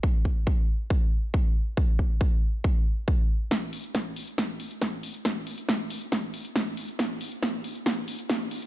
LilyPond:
\new DrumStaff \with { instrumentName = "Drums" } \drummode { \time 4/4 \tempo 4 = 138 bd8 bd8 bd4 bd4 bd4 | bd8 bd8 bd4 bd4 bd4 | <hh bd sn>8 hho16 hh16 <hh bd sn>8 hho16 hh16 <hh bd sn>8 hho16 hh16 <hh bd sn>8 hho16 hh16 | <hh bd sn>8 hho16 hh16 <hh bd sn>8 hho16 hh16 <hh bd sn>8 hho16 hh16 <hho bd sn>8 hho16 hh16 |
<hh bd sn>8 hho16 hh16 <hh bd sn>8 hho16 hh16 <hh bd sn>8 hho16 hh16 <hh bd sn>8 hho16 hh16 | }